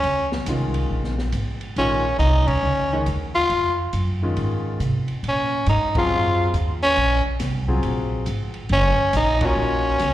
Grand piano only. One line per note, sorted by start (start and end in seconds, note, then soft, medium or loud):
0.48 1.13 D#3 medium
0.48 1.14 G#3 soft
0.48 1.14 C#4 soft
0.48 1.14 F4 medium
1.78 2.03 D#3 medium
1.78 2.03 G#3 medium
1.78 2.03 C#4 medium
1.78 2.03 F4 medium
2.93 3.06 D#3 medium
2.93 3.06 G#3 medium
2.93 3.06 C#4 medium
2.93 3.06 D#4 medium
4.22 4.78 D#3 medium
4.22 4.78 G#3 medium
4.22 4.78 C#4 soft
4.22 4.78 F4 medium
5.96 6.51 F#3 medium
5.96 6.51 C4 medium
5.96 6.51 F4 medium
5.96 6.51 G#4 medium
7.68 8.24 F#3 medium
7.68 8.24 C4 medium
7.68 8.24 F4 medium
7.68 8.24 G#4 medium
9.41 9.97 A#3 medium
9.41 9.97 D#4 medium
9.41 9.97 F4 medium
9.41 9.97 F#4 medium